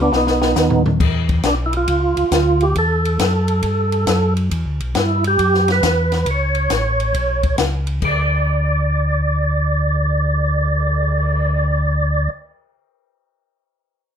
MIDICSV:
0, 0, Header, 1, 5, 480
1, 0, Start_track
1, 0, Tempo, 438596
1, 1094, Time_signature, 4, 2, 24, 8
1, 15501, End_track
2, 0, Start_track
2, 0, Title_t, "Tonewheel organ"
2, 0, Program_c, 0, 16
2, 16, Note_on_c, 0, 59, 64
2, 25, Note_on_c, 0, 62, 91
2, 146, Note_off_c, 0, 59, 0
2, 151, Note_off_c, 0, 62, 0
2, 167, Note_on_c, 0, 59, 50
2, 177, Note_on_c, 0, 63, 73
2, 905, Note_off_c, 0, 59, 0
2, 911, Note_off_c, 0, 63, 0
2, 1604, Note_on_c, 0, 62, 73
2, 1695, Note_off_c, 0, 62, 0
2, 1817, Note_on_c, 0, 64, 64
2, 1906, Note_off_c, 0, 64, 0
2, 1934, Note_on_c, 0, 65, 88
2, 2872, Note_on_c, 0, 67, 71
2, 2903, Note_off_c, 0, 65, 0
2, 3030, Note_off_c, 0, 67, 0
2, 3047, Note_on_c, 0, 69, 81
2, 4747, Note_off_c, 0, 69, 0
2, 5464, Note_on_c, 0, 64, 66
2, 5738, Note_off_c, 0, 64, 0
2, 5774, Note_on_c, 0, 67, 105
2, 6249, Note_off_c, 0, 67, 0
2, 6262, Note_on_c, 0, 71, 69
2, 6899, Note_off_c, 0, 71, 0
2, 6902, Note_on_c, 0, 73, 81
2, 8276, Note_off_c, 0, 73, 0
2, 8808, Note_on_c, 0, 74, 72
2, 13463, Note_off_c, 0, 74, 0
2, 15501, End_track
3, 0, Start_track
3, 0, Title_t, "Tonewheel organ"
3, 0, Program_c, 1, 16
3, 0, Note_on_c, 1, 37, 86
3, 118, Note_off_c, 1, 37, 0
3, 130, Note_on_c, 1, 35, 74
3, 598, Note_off_c, 1, 35, 0
3, 609, Note_on_c, 1, 39, 90
3, 1078, Note_off_c, 1, 39, 0
3, 1097, Note_on_c, 1, 40, 72
3, 1562, Note_off_c, 1, 40, 0
3, 1572, Note_on_c, 1, 35, 84
3, 2040, Note_off_c, 1, 35, 0
3, 2055, Note_on_c, 1, 37, 78
3, 2352, Note_off_c, 1, 37, 0
3, 2371, Note_on_c, 1, 37, 40
3, 2453, Note_off_c, 1, 37, 0
3, 2532, Note_on_c, 1, 38, 89
3, 3000, Note_off_c, 1, 38, 0
3, 3016, Note_on_c, 1, 40, 75
3, 3482, Note_off_c, 1, 40, 0
3, 3494, Note_on_c, 1, 42, 87
3, 3961, Note_off_c, 1, 42, 0
3, 3974, Note_on_c, 1, 43, 77
3, 4441, Note_off_c, 1, 43, 0
3, 4453, Note_on_c, 1, 42, 88
3, 4921, Note_off_c, 1, 42, 0
3, 4938, Note_on_c, 1, 40, 77
3, 5093, Note_off_c, 1, 40, 0
3, 5094, Note_on_c, 1, 38, 53
3, 5256, Note_off_c, 1, 38, 0
3, 5260, Note_on_c, 1, 35, 57
3, 5408, Note_off_c, 1, 35, 0
3, 5414, Note_on_c, 1, 43, 82
3, 5881, Note_off_c, 1, 43, 0
3, 5895, Note_on_c, 1, 42, 77
3, 6362, Note_off_c, 1, 42, 0
3, 6374, Note_on_c, 1, 40, 80
3, 6842, Note_off_c, 1, 40, 0
3, 6854, Note_on_c, 1, 37, 78
3, 7322, Note_off_c, 1, 37, 0
3, 7333, Note_on_c, 1, 33, 76
3, 7801, Note_off_c, 1, 33, 0
3, 7815, Note_on_c, 1, 35, 71
3, 8282, Note_off_c, 1, 35, 0
3, 8293, Note_on_c, 1, 37, 76
3, 8761, Note_off_c, 1, 37, 0
3, 8774, Note_on_c, 1, 38, 81
3, 13446, Note_off_c, 1, 38, 0
3, 15501, End_track
4, 0, Start_track
4, 0, Title_t, "Cymbal swell"
4, 9092, Note_on_c, 9, 59, 45
4, 12517, Note_off_c, 9, 59, 0
4, 15501, End_track
5, 0, Start_track
5, 0, Title_t, "Drums"
5, 138, Note_on_c, 9, 38, 48
5, 248, Note_off_c, 9, 38, 0
5, 296, Note_on_c, 9, 38, 50
5, 406, Note_off_c, 9, 38, 0
5, 455, Note_on_c, 9, 38, 62
5, 565, Note_off_c, 9, 38, 0
5, 610, Note_on_c, 9, 44, 59
5, 615, Note_on_c, 9, 38, 62
5, 720, Note_off_c, 9, 44, 0
5, 724, Note_off_c, 9, 38, 0
5, 770, Note_on_c, 9, 43, 61
5, 880, Note_off_c, 9, 43, 0
5, 938, Note_on_c, 9, 43, 79
5, 1047, Note_off_c, 9, 43, 0
5, 1097, Note_on_c, 9, 36, 69
5, 1098, Note_on_c, 9, 49, 75
5, 1206, Note_off_c, 9, 36, 0
5, 1207, Note_off_c, 9, 49, 0
5, 1410, Note_on_c, 9, 51, 46
5, 1414, Note_on_c, 9, 36, 55
5, 1520, Note_off_c, 9, 51, 0
5, 1524, Note_off_c, 9, 36, 0
5, 1569, Note_on_c, 9, 44, 52
5, 1569, Note_on_c, 9, 51, 59
5, 1573, Note_on_c, 9, 38, 64
5, 1575, Note_on_c, 9, 36, 22
5, 1678, Note_off_c, 9, 44, 0
5, 1678, Note_off_c, 9, 51, 0
5, 1683, Note_off_c, 9, 38, 0
5, 1684, Note_off_c, 9, 36, 0
5, 1891, Note_on_c, 9, 51, 47
5, 2000, Note_off_c, 9, 51, 0
5, 2053, Note_on_c, 9, 51, 60
5, 2056, Note_on_c, 9, 36, 23
5, 2162, Note_off_c, 9, 51, 0
5, 2165, Note_off_c, 9, 36, 0
5, 2373, Note_on_c, 9, 51, 46
5, 2483, Note_off_c, 9, 51, 0
5, 2534, Note_on_c, 9, 44, 61
5, 2534, Note_on_c, 9, 51, 58
5, 2536, Note_on_c, 9, 36, 28
5, 2539, Note_on_c, 9, 38, 64
5, 2644, Note_off_c, 9, 44, 0
5, 2644, Note_off_c, 9, 51, 0
5, 2646, Note_off_c, 9, 36, 0
5, 2648, Note_off_c, 9, 38, 0
5, 2850, Note_on_c, 9, 51, 39
5, 2960, Note_off_c, 9, 51, 0
5, 3015, Note_on_c, 9, 51, 53
5, 3018, Note_on_c, 9, 36, 27
5, 3124, Note_off_c, 9, 51, 0
5, 3127, Note_off_c, 9, 36, 0
5, 3340, Note_on_c, 9, 51, 45
5, 3449, Note_off_c, 9, 51, 0
5, 3495, Note_on_c, 9, 44, 49
5, 3495, Note_on_c, 9, 51, 69
5, 3498, Note_on_c, 9, 36, 19
5, 3499, Note_on_c, 9, 38, 63
5, 3604, Note_off_c, 9, 44, 0
5, 3604, Note_off_c, 9, 51, 0
5, 3607, Note_off_c, 9, 36, 0
5, 3609, Note_off_c, 9, 38, 0
5, 3806, Note_on_c, 9, 51, 45
5, 3916, Note_off_c, 9, 51, 0
5, 3967, Note_on_c, 9, 51, 61
5, 3976, Note_on_c, 9, 36, 22
5, 4076, Note_off_c, 9, 51, 0
5, 4086, Note_off_c, 9, 36, 0
5, 4292, Note_on_c, 9, 51, 39
5, 4401, Note_off_c, 9, 51, 0
5, 4452, Note_on_c, 9, 44, 52
5, 4452, Note_on_c, 9, 51, 61
5, 4457, Note_on_c, 9, 38, 60
5, 4459, Note_on_c, 9, 36, 19
5, 4562, Note_off_c, 9, 44, 0
5, 4562, Note_off_c, 9, 51, 0
5, 4566, Note_off_c, 9, 38, 0
5, 4568, Note_off_c, 9, 36, 0
5, 4778, Note_on_c, 9, 51, 42
5, 4887, Note_off_c, 9, 51, 0
5, 4938, Note_on_c, 9, 51, 61
5, 4940, Note_on_c, 9, 36, 22
5, 5047, Note_off_c, 9, 51, 0
5, 5050, Note_off_c, 9, 36, 0
5, 5257, Note_on_c, 9, 51, 44
5, 5366, Note_off_c, 9, 51, 0
5, 5415, Note_on_c, 9, 44, 52
5, 5415, Note_on_c, 9, 51, 56
5, 5419, Note_on_c, 9, 36, 19
5, 5419, Note_on_c, 9, 38, 65
5, 5524, Note_off_c, 9, 44, 0
5, 5524, Note_off_c, 9, 51, 0
5, 5528, Note_off_c, 9, 36, 0
5, 5528, Note_off_c, 9, 38, 0
5, 5736, Note_on_c, 9, 51, 49
5, 5846, Note_off_c, 9, 51, 0
5, 5898, Note_on_c, 9, 51, 62
5, 5899, Note_on_c, 9, 36, 21
5, 6007, Note_off_c, 9, 51, 0
5, 6008, Note_off_c, 9, 36, 0
5, 6065, Note_on_c, 9, 38, 25
5, 6174, Note_off_c, 9, 38, 0
5, 6216, Note_on_c, 9, 51, 45
5, 6225, Note_on_c, 9, 38, 40
5, 6325, Note_off_c, 9, 51, 0
5, 6334, Note_off_c, 9, 38, 0
5, 6378, Note_on_c, 9, 36, 19
5, 6379, Note_on_c, 9, 44, 56
5, 6379, Note_on_c, 9, 51, 56
5, 6383, Note_on_c, 9, 38, 62
5, 6488, Note_off_c, 9, 36, 0
5, 6488, Note_off_c, 9, 44, 0
5, 6488, Note_off_c, 9, 51, 0
5, 6493, Note_off_c, 9, 38, 0
5, 6695, Note_on_c, 9, 51, 42
5, 6699, Note_on_c, 9, 38, 31
5, 6804, Note_off_c, 9, 51, 0
5, 6809, Note_off_c, 9, 38, 0
5, 6851, Note_on_c, 9, 51, 58
5, 6857, Note_on_c, 9, 36, 19
5, 6961, Note_off_c, 9, 51, 0
5, 6966, Note_off_c, 9, 36, 0
5, 7164, Note_on_c, 9, 51, 43
5, 7274, Note_off_c, 9, 51, 0
5, 7332, Note_on_c, 9, 44, 51
5, 7332, Note_on_c, 9, 51, 55
5, 7336, Note_on_c, 9, 38, 56
5, 7338, Note_on_c, 9, 36, 15
5, 7441, Note_off_c, 9, 44, 0
5, 7441, Note_off_c, 9, 51, 0
5, 7445, Note_off_c, 9, 38, 0
5, 7447, Note_off_c, 9, 36, 0
5, 7658, Note_on_c, 9, 51, 42
5, 7767, Note_off_c, 9, 51, 0
5, 7817, Note_on_c, 9, 51, 58
5, 7819, Note_on_c, 9, 36, 25
5, 7927, Note_off_c, 9, 51, 0
5, 7929, Note_off_c, 9, 36, 0
5, 8133, Note_on_c, 9, 51, 43
5, 8137, Note_on_c, 9, 36, 46
5, 8242, Note_off_c, 9, 51, 0
5, 8246, Note_off_c, 9, 36, 0
5, 8293, Note_on_c, 9, 44, 48
5, 8293, Note_on_c, 9, 51, 64
5, 8297, Note_on_c, 9, 38, 68
5, 8298, Note_on_c, 9, 36, 22
5, 8402, Note_off_c, 9, 44, 0
5, 8402, Note_off_c, 9, 51, 0
5, 8407, Note_off_c, 9, 38, 0
5, 8408, Note_off_c, 9, 36, 0
5, 8610, Note_on_c, 9, 51, 42
5, 8719, Note_off_c, 9, 51, 0
5, 8775, Note_on_c, 9, 49, 60
5, 8778, Note_on_c, 9, 36, 50
5, 8884, Note_off_c, 9, 49, 0
5, 8887, Note_off_c, 9, 36, 0
5, 15501, End_track
0, 0, End_of_file